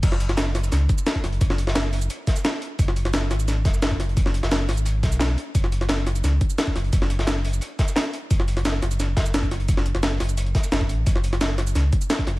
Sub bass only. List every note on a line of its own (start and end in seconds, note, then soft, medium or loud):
0.03 0.71 F#1 loud
0.72 0.88 C#2 loud
1.24 1.39 F#1 medium
1.41 2.09 F#1 loud
2.79 3.32 F#1 loud
3.31 3.64 G#1 medium
3.65 4.42 F#1 medium
4.43 4.70 F#1 loud
4.69 5.05 G#1 medium
5.03 5.36 B1 medium
5.55 6.22 F#1 loud
6.24 6.39 C#2 loud
6.75 6.91 F#1 loud
6.93 7.60 F#1 loud
8.31 8.81 F#1 loud
8.82 9.16 F#1 medium
9.17 9.93 F#1 medium
9.95 10.19 F#1 loud
10.20 10.54 F#1 medium
10.72 10.91 F#1 medium
10.89 11.05 A1 medium
11.07 11.74 F#1 loud
11.75 11.91 C#2 loud
12.27 12.39 F#1 loud